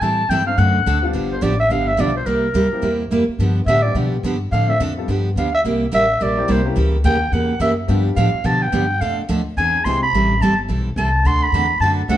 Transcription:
0.01 A2 E3 G3 C4 E4 A4 A5
0.29 G2 E3 G3 C4 E4 A4 G5
0.46 F#3 A3 C4 D4 F#4 F5
0.57 F#2 D3 A3 C4 F#4 A4 F#5
0.86 D2 D3 A3 C4 F#4 A4
1.02 F3 G3 B3 D4 F4
1.13 G1 D3 F3 B3 D4 G4
1.32 C5
1.41 A1 D3 F3 B3 D4 G4 D5
1.60 E5
1.70 G1 D3 F3 B3 D4 G4 F5
1.87 E5
1.97 B1 D3 F3 G3 B3 D4 F4 G4 D5
2.17 C5
2.26 C2 C3 G3 A#3 E4 G4 A#4
2.54 D2 C3 G3 A#3 E4 G4
2.71 G3 A#3 C4 E4 G4, muted upright bass stroke
2.82 E2 C3 G3 A#3 E4 G4
3.11 F2 C3 G3 A#3 E4 G4
3.28 muted upright bass stroke
3.38 G2 D3 F3 B3 D4 G4
3.66 A2 D3 F3 B3 D4 G4 E5
3.82 G3 B3 D4 F4 G4 D5
3.95 B2 D3 F3 B3 D4 G4
4.23 G2 D3 F3 B3 D4 G4
4.52 A2 D3 F3 C4 D4 A4 F5
4.68 A3 C4 D4 F4 A4 E5
4.80 F2 D3 F3 C4 D4 A4
4.97 G3 B3 D4 F4 A4
5.08 G2 D3 F3 B3 D4 G4
5.36 D2 D3 F3 B3 D4 G4 F5
5.55 E5
5.64 C2 C3 G3 A#3 E4 G4
5.92 A1 C3 G3 A#3 E4 G4 E5
6.20 A#1 C3 G3 A#3 E4 G4 D5
6.37 G3 A#3 C4 E4 G4
6.48 C2 C3 G3 A#3 E4 G4 C5
6.65 G3 A#3 C#4 E4 G4
6.76 C#2 C#3 E3 A#3 C#4 G4
7.04 D#2 C#3 E3 A#3 C#4 G4 G5
7.32 E2 C#3 E3 A#3 C#4 G4 F#5
7.59 F#2 C#3 E3 A#3 C#4 G4 E5
7.88 G2 D3 F3 G3 B3 D4 F4 G4
8.16 A2 D3 F3 B3 D4 G4 F5
8.34 muted upright bass stroke
8.44 B2 D3 F3 B3 D4 G4 A5
8.62 G5
8.72 G2 D3 F3 B3 D4 G4
9.01 F2 B2 F3 A3 D4 A4 F5
9.29 D2 B2 F3 A3 D4 A4
9.57 E2 E3 C4 D4 G#4 G#5
9.85 C2 E3 G#3 C4 D4 E4 G4 G#4 C6
10.03 B5
10.13 A1 E3 G3 C4 E4 A4
10.40 G1 E3 G3 C4 E4 A4 A5
10.68 B1 E3 G3 C4 E4 A4
10.96 C2 E3 G3 C4 E4 A4 A5
11.24 D2 D3 A3 C4 F#4 A4 C6
11.43 B5
11.52 E2 D3 A3 C4 F#4 A4
11.80 F#2 D3 A3 C4 F#4 A4 A5
12.08 D2 D3 A3 C4 D4 F#4 A4 F#5

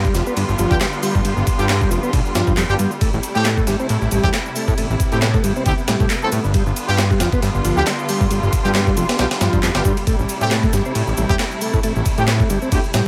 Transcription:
Already playing: D3 G3 B3 F4
0.05 G3, kick, shaker
0.14 F1 F3, snare, ride, shaker
0.27 B3, shaker
0.37 G2, ride, shaker
0.49 G1, shaker
0.59 G1 F3, ride, shaker
0.71 D2 B3 D4 F4 G4, kick, shaker
0.80 G3, snare, clap, ride, shaker
0.93 shaker
1.03 G3, open hi-hat, shaker
1.15 G2, kick, shaker
1.25 G1 G3, ride, shaker
1.37 G1, shaker
1.47 kick, ride, shaker
1.59 G2 B3 D4 F4 G4, ride, shaker
1.69 G3, snare, clap, ride, shaker
1.81 G3, kick, shaker
1.91 F1 F3, ride, shaker
2.03 B3, shaker
2.13 B1, kick, ride, shaker
2.25 shaker
2.35 G2 F3, snare, ride, shaker
2.47 G2, kick, shaker
2.57 F2 G3, clap, ride, shaker
2.69 G1 B3 D4 F4 G4, shaker
2.79 G2 G3, ride, shaker
2.91 shaker
3.01 A1 C3 A3 E4, kick, ride, shaker
3.13 A1, shaker
3.23 ride, shaker
3.35 A2 A3 C4 E4 G4, ride, shaker
3.45 A3, snare, clap, ride, shaker
3.57 A3, kick, shaker
3.67 G1 G3, snare, ride, shaker
3.80 C4, shaker
3.89 A2, ride, shaker
4.02 A1, shaker
4.11 A1 G3, ride, shaker
4.23 E2 A3 C4 E4 G4, kick, shaker
4.34 A3, snare, clap, ride, shaker
4.46 shaker
4.56 A3, open hi-hat, shaker
4.68 A2, kick, shaker
4.78 A1 A3 B3, ride, shaker
4.90 A1, shaker
5.00 kick, ride, shaker
5.12 A2 A3 C4 E4 G4, ride, shaker
5.22 A3, snare, clap, ride, shaker
5.34 A3, kick, shaker
5.44 G1 G3, ride, shaker
5.56 C4, shaker
5.66 D2 A3 C4 E4 G4, kick, ride, shaker
5.78 shaker
5.88 A2 G3, snare, ride, shaker
6.00 A2, kick, shaker
6.10 A3, clap, ride, shaker
6.22 A3 C4 E4 A4, shaker
6.32 A2 A3, ride, shaker
6.44 G1, shaker
6.54 G1 D3 G3 F4, kick, ride, shaker
6.66 G1, shaker
6.76 ride, shaker
6.89 G2 B3 D4 F4 G4, ride, shaker
6.98 G3, snare, clap, ride, shaker
7.10 G3, kick, shaker
7.20 F1 F3, snare, ride, shaker
7.32 B3, kick, shaker
7.42 G2, snare, ride, shaker
7.55 G1, shaker
7.65 G1 F3, ride, shaker
7.77 D2 B3 D4 F4 G4, shaker
7.87 G3, snare, clap, ride, shaker
7.99 shaker
8.09 G3, open hi-hat, shaker
8.21 G2, kick, shaker
8.31 G1 G3, ride, shaker
8.43 G1, shaker
8.53 kick, ride, shaker
8.65 G2 B3 D4 F4 G4, ride, shaker
8.75 G3, snare, clap, ride, shaker
8.87 G3, kick, shaker
8.97 F1 F3, ride, shaker
9.09 B3, snare, ride, shaker
9.19 B1 B3 D4 F4 G4, snare, ride, shaker
9.31 snare, ride, shaker
9.41 G2 F3, snare, ride, shaker
9.53 G2, kick, shaker
9.63 F2 G3, snare, clap, ride, shaker
9.75 G1 B3 D4 F4 G4, snare, ride, shaker
9.85 G2 G3, kick, shaker
9.97 ride, shaker
10.07 A1 C3 A3 E4, kick, ride, shaker
10.19 A1, shaker
10.29 ride, shaker
10.41 A2 A3 C4 E4 G4, ride, shaker
10.51 A3, snare, clap, ride, shaker
10.63 A3, kick, shaker
10.73 G1 G3, snare, ride, shaker
10.85 C4, shaker
10.95 A2, ride, shaker
11.07 A1, shaker
11.17 A1 G3, ride, shaker
11.29 E2 A3 C4 E4 G4, kick, shaker
11.39 A3, snare, clap, ride, shaker
11.51 shaker
11.61 A3, open hi-hat, shaker
11.73 A2, kick, shaker
11.83 A1 A3, ride, shaker
11.96 A1, shaker
12.06 kick, ride, shaker
12.18 A2 A3 C4 E4 G4, ride, shaker
12.28 A3, snare, clap, ride, shaker
12.40 A3, kick, shaker
12.50 G1 G3, ride, shaker
12.62 C4, shaker
12.72 D2 A3 C4 E4 G4, kick, ride, shaker
12.84 shaker
12.94 A2 G3, snare, ride, shaker

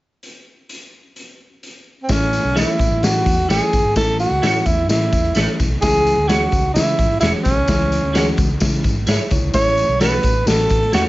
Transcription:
0.23 closed hi-hat
0.69 closed hi-hat
1.16 closed hi-hat
1.63 closed hi-hat
2.03 C4
2.09 A1 E3 A3 C#4 E4, kick, snare, closed hi-hat, tambourine
2.33 closed hi-hat, tambourine
2.44 B1
2.55 E3 A3 C#4 E4 A4 C#5, snare, closed hi-hat, tambourine
2.79 A1, kick, closed hi-hat, tambourine
2.90 A1
3.02 A2 E3 A3 C#4 E4 F#4, snare, closed hi-hat, tambourine
3.26 E2, kick, closed hi-hat, tambourine
3.39 closed hi-hat
3.49 A1 E3 A3 C#4 E4 G#4 A4 C#5, snare, closed hi-hat, tambourine
3.73 G1, kick, snare, closed hi-hat, tambourine
3.84 G#1
3.96 A1 E3 A3 C#4 E4 A4, kick, snare, closed hi-hat, tambourine
4.19 F#4, closed hi-hat, tambourine
4.31 C#2
4.42 A2 E3 A3 C#4 E4 A4 C#5, snare, closed hi-hat, tambourine
4.65 E2 E4, kick, closed hi-hat, tambourine
4.89 A2 E3 A3 C#4 E4, snare, closed hi-hat, tambourine
5.02 closed hi-hat
5.12 E2, kick, closed hi-hat, tambourine
5.25 closed hi-hat
5.35 A1 E3 A3 C#4 E4 A4 C#5, snare, closed hi-hat, tambourine
5.59 B1, kick, snare, closed hi-hat, tambourine
5.71 C2
5.81 C#2 E3 G#3 C#4 E4 G#4, kick, snare, closed hi-hat, tambourine
6.06 closed hi-hat, tambourine
6.17 D2
6.28 E3 G#3 C#4 E4 F#4 G#4 C#5, snare, closed hi-hat, tambourine
6.52 C#2, kick, closed hi-hat, tambourine
6.74 C#3 E3 G#3 C#4 E4, snare, closed hi-hat, tambourine
6.99 G#1, kick, closed hi-hat, tambourine
7.11 closed hi-hat
7.20 E1 E3 G#3 C#4 E4 F#4 G#4 C#5, snare, closed hi-hat, tambourine
7.44 B1 C#4, kick, snare, closed hi-hat, tambourine
7.57 C2
7.68 C#2 E3 G#3 C#4 E4, kick, snare, closed hi-hat, tambourine
7.92 closed hi-hat, tambourine
8.03 D2
8.13 E3 G#3 C#4 E4 F#4 G#4 C#5, snare, closed hi-hat, tambourine
8.37 C#2, kick, closed hi-hat, tambourine
8.60 C#3 E3 G#3 C#4 E4, kick, snare, closed hi-hat, tambourine
8.73 closed hi-hat
8.84 G#1, kick, closed hi-hat, tambourine
9.07 G#2 E4 G#4 C#5 E5, snare, closed hi-hat, tambourine
9.31 C#2 E4 C#5, kick, closed hi-hat, tambourine
9.41 C#2
9.54 A1 E3 A3 C#4 E4 C#5, kick, snare, closed hi-hat, tambourine
9.77 closed hi-hat, tambourine
9.88 B1
10.00 E3 A3 C#4 E4 F#4 A4 B4 C#5, snare, closed hi-hat, tambourine
10.23 A1, kick, closed hi-hat, tambourine
10.46 A1 E3 A3 C#4 F#4 A4, snare, closed hi-hat, tambourine
10.59 closed hi-hat
10.69 A2, kick, closed hi-hat, tambourine
10.83 closed hi-hat
10.92 E2 E3 A3 C#4 E4 F#4 A4 C#5, snare, closed hi-hat, tambourine

